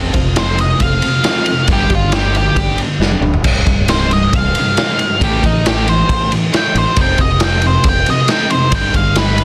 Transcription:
Already playing: fingered electric bass F1, distorted electric guitar F2 C3 F3
0.13 fingered electric bass F1, distorted electric guitar F2 C3, clean electric guitar F3 A3 C4 F4, kick, ride
0.36 distorted electric guitar F2 C3 F3, lead electric guitar C5, snare, ride
0.58 distorted electric guitar F2 C3, lead electric guitar D#5, ride
0.80 fingered electric bass F1, distorted electric guitar F2 C3, clean electric guitar F3 A3 C4 F4, lead electric guitar F5, kick, ride
1.02 distorted electric guitar F2 C3, ride
1.23 distorted electric guitar F2 C3, clean electric guitar F3 A3 C4 F4, snare, ride
1.27 distorted electric guitar F3
1.46 distorted electric guitar F2 C3, ride
1.68 fingered electric bass G1, distorted electric guitar G2 D3 G3, kick, ride
1.73 lead electric guitar G4
1.90 fingered electric bass G1, distorted electric guitar G2 D3, clean electric guitar G3 B3 D4 G4, kick, ride
1.95 lead electric guitar F4
2.12 distorted electric guitar G2 D3 G3, lead electric guitar G4, snare, ride
2.35 distorted electric guitar G2 D3, lead electric guitar G4, ride
2.56 fingered electric bass G1, distorted electric guitar G2 D3, clean electric guitar G3 B3 D4 G4, kick, ride
2.78 distorted electric guitar G2 D3, ride
2.99 fingered electric bass F1, distorted electric guitar G2 D3 G3, clean electric guitar G3 B3 D4 G4, snare
3.11 high tom
3.21 fingered electric bass D1, distorted electric guitar G2 D3, mid tom
3.34 floor tom
3.44 fingered electric bass C1, distorted electric guitar C2 G2 C3, kick, crash
3.66 fingered electric bass C1, distorted electric guitar C2 G2, kick, ride
3.88 distorted electric guitar C2 G2 C3, lead electric guitar C5, snare, ride
4.11 distorted electric guitar C2 G2, lead electric guitar D#5, ride
4.33 fingered electric bass C1, distorted electric guitar C2 G2, lead electric guitar F5, kick, ride
4.55 distorted electric guitar C2 G2, ride
4.77 distorted electric guitar C2 G2 C3, snare, ride
4.99 distorted electric guitar C2 G2, ride
5.21 fingered electric bass A1, distorted electric guitar A2 E3 A3, lead electric guitar G4, kick, ride
5.43 fingered electric bass A1, distorted electric guitar A2 E3, lead electric guitar D#4, kick, ride
5.65 distorted electric guitar A2 E3 A3, lead electric guitar G4, snare, ride
5.87 distorted electric guitar A2 E3, lead electric guitar C5, ride
6.08 fingered electric bass A1, distorted electric guitar A2 E3, kick, ride
6.31 distorted electric guitar A2 E3, ride
6.52 distorted electric guitar A2 E3 A3, snare, ride
6.57 lead electric guitar G5
6.75 fingered electric bass A1, distorted electric guitar A2 E3, lead electric guitar C5, ride
6.96 fingered electric bass F1, distorted electric guitar F2 C3 F3, kick, ride
7.01 lead electric guitar G5
7.18 fingered electric bass F1, distorted electric guitar F2 C3, lead electric guitar D#5, kick, ride
7.40 distorted electric guitar F2 C3 F3, lead electric guitar G5, snare, ride
7.62 distorted electric guitar F2 C3, ride
7.67 lead electric guitar C5
7.84 fingered electric bass F1, distorted electric guitar F2 C3, kick, ride
7.89 lead electric guitar G5
8.06 distorted electric guitar F2 C3, lead electric guitar D#5, ride
8.28 distorted electric guitar F2 C3 F3, lead electric guitar G5, snare, ride
8.50 distorted electric guitar F2 C3, lead electric guitar C5, ride
8.72 fingered electric bass G1, distorted electric guitar G2 D3 G3, lead electric guitar G5, kick, ride
8.94 fingered electric bass G1, distorted electric guitar G2 D3, lead electric guitar F5, kick, ride
9.16 distorted electric guitar G2 D3 G3, lead electric guitar B4, snare, ride
9.38 distorted electric guitar G2 D3, ride

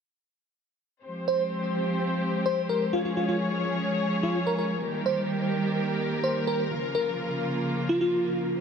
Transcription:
1.04 string section F3 G#3 C4 G4 C5
1.28 fm electric piano C5
2.46 fm electric piano C5
2.69 fm electric piano A#4
2.93 string section F3 C#4 G#4 C#5, fm electric piano F4
3.05 fm electric piano F4
3.17 fm electric piano F4
3.29 fm electric piano F4
4.23 fm electric piano F4
4.47 fm electric piano A#4
4.58 fm electric piano A#4
4.82 string section D#3 G3 A#3 G4 A#4
5.06 fm electric piano C5
6.24 fm electric piano C5
6.47 fm electric piano A#4
6.71 string section C#3 F3 A#3 F4
6.95 fm electric piano A#4
7.89 fm electric piano F4
8.01 fm electric piano F4

